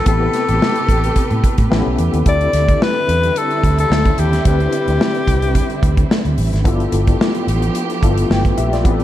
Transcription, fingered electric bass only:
0.06 0.27 A1 loud
0.49 0.58 A1 medium
0.89 1.09 A1 medium
1.31 1.40 A2 medium
1.58 1.68 A2 medium
1.71 1.82 A1 loud
1.86 1.95 B1 medium
1.99 2.10 E2 medium
2.13 2.23 D#2 medium
2.26 2.46 D2 medium
2.53 2.74 D2 medium
3.08 3.29 E2 medium
3.64 3.84 D2 medium
3.90 4.11 D2 medium
4.18 4.38 D#2 medium
4.46 4.66 D2 medium
4.88 4.97 D2 medium
5.27 5.59 C2 medium
5.83 6.03 D2 medium
6.25 6.34 D2 medium
6.38 6.49 A1 medium
6.53 6.65 G#1 medium
6.65 6.86 G1 medium
6.92 7.13 G1 medium
7.47 7.68 A1 medium
8.03 8.23 G1 medium
8.30 8.50 G1 medium
8.58 8.85 A#1 medium
8.85 9.04 A1 medium

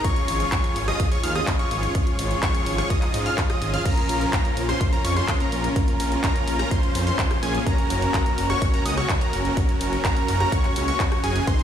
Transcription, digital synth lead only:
0.04 0.49 C#6 loud
0.52 0.85 C#6 medium
0.88 1.09 D#6 loud
1.12 1.21 C#6 loud
1.24 1.33 F6 loud
1.35 1.56 D#6 loud
1.59 2.40 C#6 medium
2.43 2.75 C#6 loud
2.78 2.88 C#6 loud
2.90 3.23 D#6 loud
3.26 3.40 F6 medium
3.50 3.71 D#6 medium
3.74 3.83 F6 loud
3.86 4.30 A#5 loud
4.33 4.66 A#5 medium
4.69 4.90 C6 loud
4.93 5.02 A#5 loud
5.05 5.14 C#6 loud
5.16 5.37 C6 loud
5.40 6.21 A#5 medium
6.24 6.56 A#5 loud
6.59 6.69 A#5 loud
6.71 7.04 C6 loud
7.07 7.40 C6 medium
7.43 7.64 G#5 loud
7.66 8.11 A#5 loud
8.14 8.47 A#5 medium
8.50 8.71 C#6 loud
8.74 8.83 A#5 loud
8.86 8.95 D#6 loud
8.97 9.18 C#6 loud
9.21 10.02 A#5 medium
10.05 10.37 A#5 loud
10.40 10.50 A#5 loud
10.52 10.85 C#6 loud
10.88 11.21 C#6 medium
11.24 11.45 G#5 loud
11.47 11.63 C6 loud

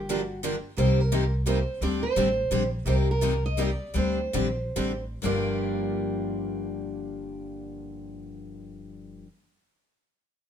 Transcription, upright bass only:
0.00 0.57 G1 medium
0.77 1.61 C2 medium
1.81 2.09 D2 medium
2.16 2.45 A1 medium
2.51 2.80 A#1 medium
2.85 3.72 C2 medium
3.94 4.26 D2 medium
4.34 4.70 A#1 medium
4.76 5.16 A1 medium
5.24 9.22 G1 medium

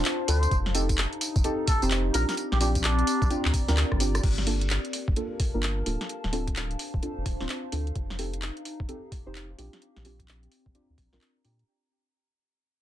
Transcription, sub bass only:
0.28 0.47 D2 loud
0.51 1.07 F1 loud
1.36 1.42 F1 medium
1.82 2.11 F1 medium
2.14 2.25 A#1 medium
2.52 3.04 A#1 medium
3.22 3.28 A#1 medium
3.45 3.52 D2 loud
3.68 3.84 D2 medium
3.92 4.20 G1 medium
4.24 4.79 G1 medium
5.08 5.14 G1 medium
5.54 5.83 G1 medium
5.86 5.97 D1 medium
6.24 6.76 D1 medium
6.94 7.00 D1 medium
7.17 7.24 F1 medium
7.26 7.37 D1 medium
7.41 7.47 D1 loud
7.73 7.91 D2 medium
7.96 8.51 F1 medium
8.80 8.86 F1 medium
9.27 9.55 F1 medium
9.58 9.69 A#1 medium
9.96 10.48 A#1 medium
10.66 10.72 A#1 medium
10.90 10.96 D2 medium
10.98 11.09 A#1 loud
11.13 11.19 A#1 loud
11.45 11.63 A#2 medium

